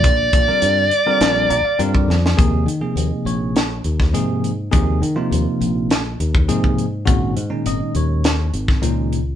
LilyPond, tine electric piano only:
<<
  \new Staff \with { instrumentName = "Tine electric piano" } { \time 4/4 \key ais \phrygian \tempo 4 = 102 r2 r8 ais''16 eis''16 eis''16 d''8. | \key aes \major r4 ees''8 des''4 r4. | r1 | r4 ees''8 des''4 r4. | }
  \new Staff \with { instrumentName = "Tine electric piano" } { \time 4/4 \key ais \phrygian r8. <d g bis eis' ais'>8 r8 <d g bis eis' ais'>8. r8 <d g bis eis' ais'>8 r8 | \key aes \major <c f bes ees' aes'>8 r16 <c f bes ees' aes'>4~ <c f bes ees' aes'>16 r4 <c f bes ees' aes'>8 r8 | <c f bes ees' aes'>8 r16 <c f bes ees' f'>4~ <c f bes ees' f'>16 r4 <c f bes ees' aes'>8 r8 | <bes, ees aes des' ges'>8 r16 <bes, ees aes des' ees'>4~ <bes, ees aes des' ees'>16 r4 <bes, ees aes des' ees'>8 r8 | }
>>